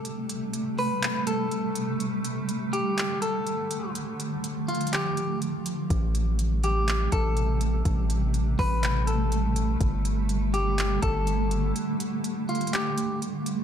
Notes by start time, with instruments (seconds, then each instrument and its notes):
Already playing: ambient pad C3 G3 A3
0.05 closed hi-hat
0.29 closed hi-hat
0.53 closed hi-hat
0.78 clean electric guitar B4, open hi-hat
1.03 clap, closed hi-hat
1.27 clean electric guitar A4, closed hi-hat
1.51 closed hi-hat
1.75 closed hi-hat
2.00 ambient pad D3, closed hi-hat
2.25 closed hi-hat
2.49 closed hi-hat
2.73 clean electric guitar G4, closed hi-hat
2.98 clap, closed hi-hat
3.22 clean electric guitar A4, closed hi-hat
3.47 closed hi-hat
3.71 closed hi-hat
3.95 ambient pad F3, closed hi-hat
4.20 closed hi-hat
4.44 closed hi-hat
4.68 clean electric guitar F4, closed hi-hat
4.75 closed hi-hat
4.81 closed hi-hat
4.87 closed hi-hat
4.93 clean electric guitar G4, clap, closed hi-hat
5.17 closed hi-hat
5.42 closed hi-hat
5.66 closed hi-hat
5.90 808-style bass A1, ambient pad C3 G3 A3, kick, closed hi-hat
6.15 closed hi-hat
6.39 closed hi-hat
6.63 clean electric guitar G4, closed hi-hat
6.88 clap, closed hi-hat
7.12 808-style bass A1, clean electric guitar A4, kick, closed hi-hat
7.37 closed hi-hat
7.61 closed hi-hat
7.85 808-style bass A1, kick, closed hi-hat
8.10 closed hi-hat
8.34 closed hi-hat
8.59 808-style bass A1, clean electric guitar B4, kick, open hi-hat
8.83 clap, closed hi-hat
9.07 clean electric guitar A4, closed hi-hat
9.32 closed hi-hat
9.56 closed hi-hat
9.81 808-style bass G1, ambient pad D3, kick, closed hi-hat
10.05 closed hi-hat
10.29 closed hi-hat
10.54 clean electric guitar G4, closed hi-hat
10.78 clap, closed hi-hat
11.02 808-style bass G1, clean electric guitar A4, kick, closed hi-hat
11.27 closed hi-hat
11.51 closed hi-hat
11.76 closed hi-hat
12.00 closed hi-hat
12.24 closed hi-hat
12.49 clean electric guitar F4, closed hi-hat
12.55 closed hi-hat
12.61 closed hi-hat
12.67 closed hi-hat
12.73 clean electric guitar G4, clap, closed hi-hat
12.98 closed hi-hat
13.22 closed hi-hat
13.46 closed hi-hat